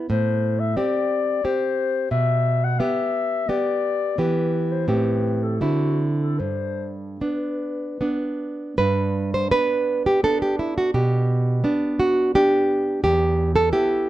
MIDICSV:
0, 0, Header, 1, 3, 480
1, 0, Start_track
1, 0, Key_signature, 1, "major"
1, 0, Tempo, 671892
1, 73, Time_signature, 3, 2, 24, 8
1, 1513, Tempo, 692042
1, 3433, Tempo, 731707
1, 3913, Tempo, 798935
1, 5353, Tempo, 756620
1, 6313, Tempo, 701754
1, 9436, End_track
2, 0, Start_track
2, 0, Title_t, "Clarinet"
2, 0, Program_c, 0, 71
2, 66, Note_on_c, 0, 72, 68
2, 427, Note_on_c, 0, 76, 62
2, 438, Note_off_c, 0, 72, 0
2, 547, Note_on_c, 0, 74, 71
2, 558, Note_off_c, 0, 76, 0
2, 1034, Note_on_c, 0, 72, 78
2, 1045, Note_off_c, 0, 74, 0
2, 1502, Note_off_c, 0, 72, 0
2, 1506, Note_on_c, 0, 76, 69
2, 1878, Note_on_c, 0, 78, 58
2, 1889, Note_off_c, 0, 76, 0
2, 1984, Note_on_c, 0, 76, 70
2, 1995, Note_off_c, 0, 78, 0
2, 2466, Note_on_c, 0, 74, 77
2, 2477, Note_off_c, 0, 76, 0
2, 2950, Note_on_c, 0, 71, 62
2, 2960, Note_off_c, 0, 74, 0
2, 3315, Note_on_c, 0, 72, 59
2, 3326, Note_off_c, 0, 71, 0
2, 3425, Note_on_c, 0, 71, 61
2, 3435, Note_off_c, 0, 72, 0
2, 3790, Note_on_c, 0, 69, 49
2, 3800, Note_off_c, 0, 71, 0
2, 3906, Note_on_c, 0, 66, 54
2, 3915, Note_off_c, 0, 69, 0
2, 4167, Note_off_c, 0, 66, 0
2, 4269, Note_on_c, 0, 69, 49
2, 4379, Note_on_c, 0, 72, 57
2, 4388, Note_off_c, 0, 69, 0
2, 4701, Note_off_c, 0, 72, 0
2, 4868, Note_on_c, 0, 71, 41
2, 5573, Note_off_c, 0, 71, 0
2, 9436, End_track
3, 0, Start_track
3, 0, Title_t, "Nylon-string guitar"
3, 0, Program_c, 1, 24
3, 69, Note_on_c, 1, 45, 52
3, 534, Note_off_c, 1, 45, 0
3, 549, Note_on_c, 1, 60, 38
3, 553, Note_on_c, 1, 67, 42
3, 1005, Note_off_c, 1, 60, 0
3, 1007, Note_off_c, 1, 67, 0
3, 1032, Note_on_c, 1, 60, 39
3, 1034, Note_on_c, 1, 67, 44
3, 1484, Note_off_c, 1, 60, 0
3, 1484, Note_off_c, 1, 67, 0
3, 1509, Note_on_c, 1, 47, 51
3, 1975, Note_off_c, 1, 47, 0
3, 1985, Note_on_c, 1, 59, 40
3, 1989, Note_on_c, 1, 67, 45
3, 2437, Note_off_c, 1, 59, 0
3, 2438, Note_off_c, 1, 67, 0
3, 2464, Note_on_c, 1, 59, 41
3, 2468, Note_on_c, 1, 67, 41
3, 2923, Note_off_c, 1, 59, 0
3, 2925, Note_off_c, 1, 67, 0
3, 2945, Note_on_c, 1, 52, 42
3, 2948, Note_on_c, 1, 59, 38
3, 2950, Note_on_c, 1, 67, 36
3, 3403, Note_off_c, 1, 59, 0
3, 3405, Note_off_c, 1, 67, 0
3, 3416, Note_off_c, 1, 52, 0
3, 3427, Note_on_c, 1, 45, 44
3, 3430, Note_on_c, 1, 60, 34
3, 3434, Note_on_c, 1, 67, 32
3, 3885, Note_off_c, 1, 60, 0
3, 3886, Note_off_c, 1, 67, 0
3, 3897, Note_off_c, 1, 45, 0
3, 3909, Note_on_c, 1, 50, 41
3, 3909, Note_on_c, 1, 60, 33
3, 3912, Note_on_c, 1, 64, 30
3, 4362, Note_off_c, 1, 60, 0
3, 4364, Note_off_c, 1, 64, 0
3, 4372, Note_off_c, 1, 50, 0
3, 4381, Note_on_c, 1, 43, 37
3, 4858, Note_off_c, 1, 43, 0
3, 4872, Note_on_c, 1, 59, 30
3, 4872, Note_on_c, 1, 62, 32
3, 5327, Note_off_c, 1, 59, 0
3, 5328, Note_off_c, 1, 62, 0
3, 5349, Note_on_c, 1, 59, 28
3, 5353, Note_on_c, 1, 62, 28
3, 5819, Note_off_c, 1, 59, 0
3, 5821, Note_off_c, 1, 62, 0
3, 5838, Note_on_c, 1, 71, 69
3, 5841, Note_on_c, 1, 43, 48
3, 6181, Note_off_c, 1, 71, 0
3, 6195, Note_on_c, 1, 72, 72
3, 6297, Note_off_c, 1, 43, 0
3, 6302, Note_off_c, 1, 72, 0
3, 6305, Note_on_c, 1, 71, 77
3, 6308, Note_on_c, 1, 59, 42
3, 6310, Note_on_c, 1, 62, 43
3, 6662, Note_off_c, 1, 71, 0
3, 6679, Note_on_c, 1, 67, 72
3, 6774, Note_off_c, 1, 59, 0
3, 6775, Note_off_c, 1, 62, 0
3, 6797, Note_off_c, 1, 67, 0
3, 6797, Note_on_c, 1, 59, 37
3, 6799, Note_on_c, 1, 62, 43
3, 6800, Note_on_c, 1, 69, 73
3, 6921, Note_off_c, 1, 69, 0
3, 6924, Note_on_c, 1, 67, 69
3, 7039, Note_off_c, 1, 67, 0
3, 7041, Note_on_c, 1, 64, 55
3, 7164, Note_off_c, 1, 64, 0
3, 7167, Note_on_c, 1, 66, 63
3, 7256, Note_off_c, 1, 59, 0
3, 7256, Note_off_c, 1, 62, 0
3, 7279, Note_off_c, 1, 66, 0
3, 7280, Note_on_c, 1, 47, 52
3, 7281, Note_on_c, 1, 67, 66
3, 7748, Note_off_c, 1, 47, 0
3, 7757, Note_on_c, 1, 59, 46
3, 7760, Note_on_c, 1, 62, 47
3, 7977, Note_off_c, 1, 67, 0
3, 8001, Note_on_c, 1, 66, 66
3, 8218, Note_off_c, 1, 59, 0
3, 8220, Note_off_c, 1, 62, 0
3, 8236, Note_off_c, 1, 66, 0
3, 8245, Note_on_c, 1, 59, 42
3, 8245, Note_on_c, 1, 67, 73
3, 8248, Note_on_c, 1, 62, 46
3, 8693, Note_off_c, 1, 59, 0
3, 8694, Note_off_c, 1, 62, 0
3, 8701, Note_off_c, 1, 67, 0
3, 8713, Note_on_c, 1, 67, 77
3, 8714, Note_on_c, 1, 40, 55
3, 9057, Note_off_c, 1, 67, 0
3, 9068, Note_on_c, 1, 69, 80
3, 9178, Note_off_c, 1, 40, 0
3, 9183, Note_off_c, 1, 69, 0
3, 9183, Note_on_c, 1, 59, 43
3, 9185, Note_on_c, 1, 64, 49
3, 9186, Note_on_c, 1, 67, 78
3, 9436, Note_off_c, 1, 59, 0
3, 9436, Note_off_c, 1, 64, 0
3, 9436, Note_off_c, 1, 67, 0
3, 9436, End_track
0, 0, End_of_file